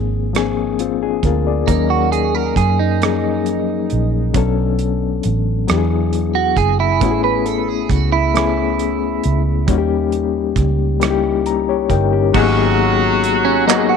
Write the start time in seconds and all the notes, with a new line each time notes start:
Already playing: G#1 F3 A#3 C4 D4 G#4
0.33 F3 A#3 C4 D4, cross-stick, closed hi-hat
0.38 G#4
0.79 C4 F4, closed hi-hat
1.03 D4 G#4
1.23 D2 F4 A#4, kick, closed hi-hat
1.47 G#4 D5
1.67 D#2 E3 A#3 C#4 D#4, kick, closed hi-hat
1.71 F#3 A#4
1.90 F#4
2.12 G#4, closed hi-hat
2.35 A#4
2.56 F#2 G#4, kick, closed hi-hat
2.79 D#4
3.01 F3 A#3 C#4 D#4, cross-stick, closed hi-hat
3.05 F#3 G#4
3.46 closed hi-hat
3.90 A#1, closed hi-hat
4.34 B1 F#3 B3 C#4 D4, kick, closed hi-hat
4.38 A4
4.79 closed hi-hat
5.23 A1, closed hi-hat
5.67 E2 F#3 B3 D4 E4 G4, cross-stick, closed hi-hat
5.78 G#4
6.13 closed hi-hat
6.35 F#4
6.57 F#1 G#4, kick, closed hi-hat
6.80 E4
7.01 A1 A3 B3 C#4 E4, kick, closed hi-hat
7.05 F#4
7.11 G#4
7.24 B4
7.46 A4, closed hi-hat
7.68 G#4
7.89 C#2 F#4, kick, closed hi-hat
8.12 E4
8.34 A3 B3 C#4 E4, cross-stick, closed hi-hat
8.38 G#4
8.79 closed hi-hat
9.24 C#2, closed hi-hat
9.67 D#2 G3 A#3 C#4 D#4, kick, closed hi-hat
9.71 F#4
9.78 G4
10.12 closed hi-hat
10.56 C#2, kick, closed hi-hat
11.00 G3 A#3 C#4 D#4, cross-stick, closed hi-hat
11.04 E4
11.10 G4
11.46 A#5, closed hi-hat
11.69 G4 C#5
11.90 G1 D#4 A#4 G5, kick, closed hi-hat
12.13 C#4 G4
12.33 G#1 F#3 A#3 B3 D#4 F#4, kick, crash
12.37 G#4
13.24 closed hi-hat
13.45 C#4
13.67 F#3 A#3 B3 D#4 F#4, clap, closed hi-hat
13.78 G#4
13.89 F#4